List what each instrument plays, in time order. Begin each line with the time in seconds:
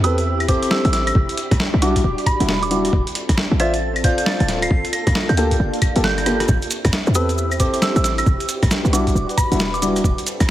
Already playing: 808-style bass E2, string machine C4 E4 G4 B5
0.04 grand piano C4 G4 A4 B4, synth bell E6, closed hi-hat
0.18 closed hi-hat
0.40 closed hi-hat, claves
0.48 grand piano C4 G4 A4 C5, synth bell D6, kick, closed hi-hat
0.62 synth bell D6, closed hi-hat
0.71 synth bell E6, snare
0.85 808-style bass A1, synth bell E6, closed hi-hat
0.93 synth bell E6, snare, closed hi-hat
1.07 synth bell E6, cross-stick, closed hi-hat, claves
1.15 808-style bass E1, string machine D4 F#4 G4, kick
1.29 closed hi-hat
1.37 closed hi-hat
1.51 808-style bass A1, kick, cross-stick, closed hi-hat
1.60 snare
1.74 808-style bass B1
1.82 grand piano G3 D4 E4 F#4, synth bell D6, closed hi-hat
1.96 kick, closed hi-hat
2.04 808-style bass D1
2.18 closed hi-hat
2.26 synth bell B5, kick, closed hi-hat, claves
2.40 808-style bass E1, grand piano G3 D4 E4 F#4, closed hi-hat
2.49 snare
2.63 synth bell D6, closed hi-hat
2.71 grand piano G3 D4 E4 F#4, synth bell D6, closed hi-hat
2.85 cross-stick, closed hi-hat
2.93 808-style bass D1, string machine C4 F4 A4, kick
3.07 closed hi-hat
3.15 closed hi-hat
3.29 808-style bass G1, kick, cross-stick, closed hi-hat
3.38 snare
3.51 808-style bass A1
3.60 grand piano F4 C5 D5 E5, synth bell A6, closed hi-hat
3.74 closed hi-hat
3.96 closed hi-hat, claves
4.04 grand piano F4 C5 D5 F5, synth bell G6, kick, closed hi-hat
4.18 synth bell G6, closed hi-hat
4.26 synth bell A6, snare
4.40 808-style bass D1, synth bell A6, closed hi-hat
4.48 snare, closed hi-hat
4.62 synth bell C7, cross-stick, closed hi-hat, claves
4.71 808-style bass G1, string machine A#3 D4, kick
4.85 closed hi-hat
4.93 synth bell A#6, closed hi-hat
5.07 808-style bass C2, synth bell A#6, kick, cross-stick, closed hi-hat
5.15 snare
5.29 808-style bass D2, synth bell G6, closed hi-hat
5.37 grand piano A#3 F4 G4 A4, synth bell G6, closed hi-hat
5.51 kick, closed hi-hat
5.60 808-style bass F1
5.74 closed hi-hat
5.82 kick, closed hi-hat, claves
5.96 808-style bass G1, grand piano A#3 F4 G4 A4, closed hi-hat
6.04 synth bell G6, snare
6.18 cross-stick, closed hi-hat
6.26 grand piano A#3 F4 G4 A4, cross-stick, closed hi-hat
6.40 cross-stick, closed hi-hat
6.48 808-style bass A1, string machine C4 E4 G4 B5, kick, maracas
6.62 closed hi-hat, maracas
6.71 closed hi-hat, maracas
6.85 808-style bass D2, kick, cross-stick, closed hi-hat, maracas
6.93 snare, maracas
7.07 808-style bass E2, maracas
7.15 grand piano C4 G4 A4 B4, synth bell E6, closed hi-hat, maracas
7.29 closed hi-hat, maracas
7.38 maracas
7.51 closed hi-hat, claves, maracas
7.60 grand piano C4 G4 A4 C5, synth bell D6, kick, closed hi-hat, maracas
7.73 synth bell D6, closed hi-hat, maracas
7.82 synth bell E6, snare, maracas
7.96 808-style bass A1, synth bell E6, closed hi-hat, maracas
8.04 synth bell E6, snare, closed hi-hat, maracas
8.18 synth bell E6, cross-stick, closed hi-hat, claves, maracas
8.26 808-style bass E1, string machine D4 F#4 B4, kick, maracas
8.40 closed hi-hat, maracas
8.49 closed hi-hat, maracas
8.63 808-style bass A1, kick, cross-stick, closed hi-hat, maracas
8.71 snare, maracas
8.85 808-style bass B1, maracas
8.93 grand piano G3 D4 E4 F#4, synth bell D6, closed hi-hat, maracas
9.07 kick, closed hi-hat, maracas
9.15 808-style bass D1, maracas
9.29 closed hi-hat, maracas
9.37 synth bell B5, kick, closed hi-hat, claves, maracas
9.52 808-style bass E1, grand piano G3 D4 E4 F#4, closed hi-hat, maracas
9.60 snare, maracas
9.74 synth bell D6, closed hi-hat, maracas
9.82 grand piano G3 D4 E4 F#4, synth bell D6, closed hi-hat, maracas
9.96 cross-stick, closed hi-hat, maracas
10.04 808-style bass D1, string machine C4 F4 A4, kick, maracas
10.18 closed hi-hat, maracas
10.27 closed hi-hat, maracas
10.40 808-style bass G1, kick, cross-stick, closed hi-hat, maracas